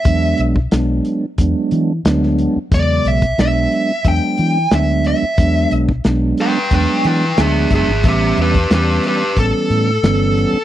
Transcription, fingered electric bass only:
X:1
M:4/4
L:1/16
Q:1/4=90
K:Emix
V:1 name="Fingered electric bass" clef=bass
E,,2 B,,,2 B,,,2 z2 E,, z E,2 D,,3 z | E,,2 B,,,2 B,,,2 z2 E,, z E,2 D,,3 z | E,,2 B,,,2 B,,,2 z2 E,, z E,2 D,,2 F,,, G,,, | A,,,2 E,,2 E,,2 z2 A,,, z A,,2 =G,,,3 z |]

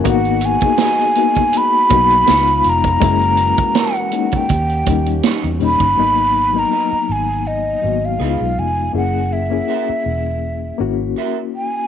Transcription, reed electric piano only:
X:1
M:4/4
L:1/16
Q:"Swing 16ths" 1/4=81
K:G#m
V:1 name="Reed electric piano"
[A,B,DF]2 z [A,B,DG]2 z [A,B,DF]3 z [A,B,DF]2 [G,B,DE^E]3 z | [G,A,CE]4- [G,A,CE] z [G,A,CD]2 z2 [=G,A,CD]3 z [G,A,CD]2 | [F,A,B,D]2 z [F,A,B,D]4- [F,A,B,D] z2 [F,A,B,F]2 [G,B,DE^E]3 z | [A,CEG]2 z [A,CEG]4- [A,CEG] z2 [A,CEF]4- [A,CEF] z |]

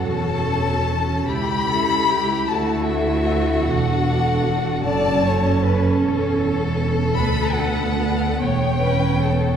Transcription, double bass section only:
X:1
M:6/8
L:1/8
Q:3/8=51
K:Edor
V:1 name="Double bass section" clef=bass
E,,,3 C,,3 | D,,3 E,,,3 | F,,,3 E,,,3 | [K:Bm] D,,3 E,,,3 |]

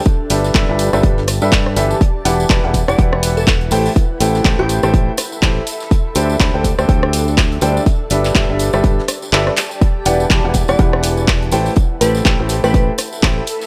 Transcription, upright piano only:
X:1
M:4/4
L:1/16
Q:"Swing 16ths" 1/4=123
K:Ador
V:1 name="Upright piano"
z2 [G,DGABe]2 [G,DGABe] [G,DGABe]2 [G,DGABe]2 z2 [G,DGABe]3 [E,DGABe] z | z2 [E,EGBdf] z [E,EGBda] [E,EGBdf] z [E,EGBdf] [E,EGBdf]6 [A,EGAcg] z | z2 [A,EGAcg]2 [A,EGAcg] [A,EGAcg]2 [A,EGAcg]2 z3 [EGAcg] z3 | z2 [D,DGAcg] z [D,DGAcb] [D,DGAcg] z [D,DGAcg] [D,DGAcg]6 [G,DGAcg] z |
z2 [G,DGABe]2 [G,DGABe] [G,DGABe]2 [G,DGABe]2 z3 [G,DGABe] z3 | z2 [E,EGBdf] z [E,EGBda] [E,EGBdf] z [E,EGBdf] [E,EGBdf]6 [A,EGAcg] z | z2 [A,EGAcg]2 [A,EGAcg] [A,EGAcg]2 [A,EGAcg]2 z3 [EGAcg] z3 |]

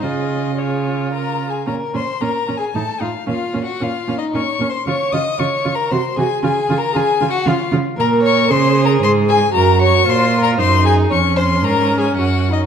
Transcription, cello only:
X:1
M:3/4
L:1/8
Q:1/4=114
K:Db
V:1 name="Cello" clef=bass
D,4- D, z | [K:Bbm] B,, B,, B,, B,, =A,, A,, | B,, B,, B,, B,, B,, B,, | D, D, D, D, C, C, |
D, D, D, D, D, D, | [K:Db] B,,2 D,2 A,,2 | G,,2 B,,2 G,,2 | F,,2 A,,2 G,,2 |]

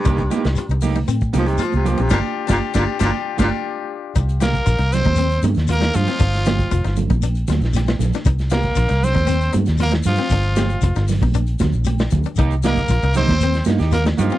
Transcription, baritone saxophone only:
X:1
M:4/4
L:1/16
Q:1/4=117
K:Cm
V:1 name="Baritone saxophone" clef=bass
G,,6 z4 F, C, F, C, F, C, | B,, z2 B,, z B,, z B,, z2 B,, z4 z | z16 | z16 |
z16 | z16 | z16 |]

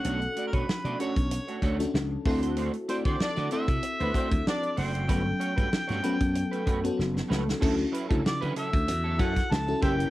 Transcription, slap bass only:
X:1
M:4/4
L:1/16
Q:"Swing 16ths" 1/4=95
K:D
V:1 name="Slap bass" clef=bass
B,,,2 z B,, z B,, z B,,,2 z D,,2 C,,2 D,,2- | D,,2 z D, z D, z =C, z D,, z D,, z2 F,,,2 | G,,,2 z G,, z G,, z F,,2 z F,,2 F,,,2 C,,2 | D,,2 z D,, z D, z D,, E,,2 F,,2 C,,2 F,,,2 |]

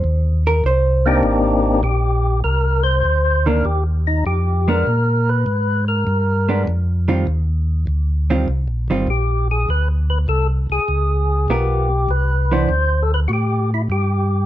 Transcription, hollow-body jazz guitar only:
X:1
M:4/4
L:1/8
Q:"Swing" 1/4=100
K:Cm
V:1 name="Hollow-body jazz guitar"
c B c2 z4 | z3 [E,B,D] z3 [A,=B,D] | z4 z [A,_CD] z [E,G,=CF] | z3 [E,G,CF] z [E,G,CF] z2 |
z6 [=B,F_B] z | z [=E,=B,D] z6 |]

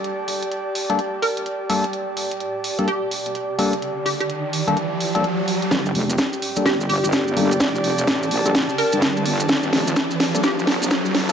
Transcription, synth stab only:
X:1
M:4/4
L:1/16
Q:"Swing 16ths" 1/4=127
K:Gm
V:1 name="Synth stab"
z6 z [G,B,DA] z6 [G,B,DA] z | z6 z [G,B,DA] z6 [G,B,DA] z | z6 z [G,B,DA] z3 [G,B,DA] z4 | z6 z [G,B,DA] z6 [G,B,DA] z |
z6 z [G,B,DA] z8 | z6 z [G,B,DA] z6 z [G,B,DA] |]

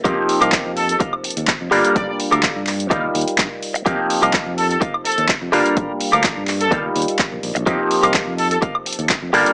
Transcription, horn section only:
X:1
M:4/4
L:1/16
Q:1/4=126
K:Fmix
V:1 name="Horn section"
z6 A A z8 | d d z12 z2 | z6 A A z2 A2 z4 | z6 z A z8 |
z6 A A z8 |]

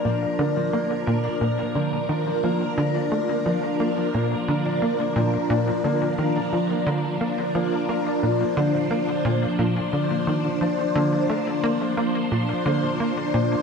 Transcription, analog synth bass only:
X:1
M:4/4
L:1/8
Q:1/4=88
K:Bb
V:1 name="Analog synth bass" clef=bass
B,, D, B, B,, B,, D, E, F, | D, A, F, B, B,, D, B, B,, | B,, D, E, F, D, B, F, B, | B,, D, B, B,, B,, D, E, F, |
D, A, B, B, B,, D, B, B,, |]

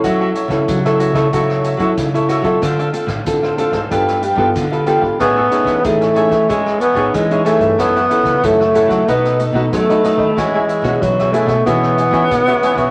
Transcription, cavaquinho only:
X:1
M:4/4
L:1/16
Q:1/4=93
K:E
V:1 name="Cavaquinho"
[FAce] [FAce] [FAce]3 [Ace] [FAce] [Ace] [FAce]2 [FAce] [FAce] z [Ace] [FAce] [Ace] | [=DA=c=f] [DAcf] [DAcf]3 [Acf] [DAcf] [Acf] [D=GBf]2 [DGBf] [DGBf] z [GBf] [DGBf] [GBf] | [Aceg] [Aceg] [Aceg]3 [ceg] [Aceg] [ceg] [ceg]2 [Aceg] [Aceg] z [ceg] [Aceg] [ceg] | [EAcf] [EAcf] [EAcf]3 [Acf] [EAcf] [Acf] [DABd]2 [DABd] [DABd] z [ABd] [DABd] [ABd] |
[EGce] [EGce] [EGce]3 [Gce] [EGce] [Gce] [EGce]2 [EGce] [EGce] z [Gce] [EGce] [Gce] |]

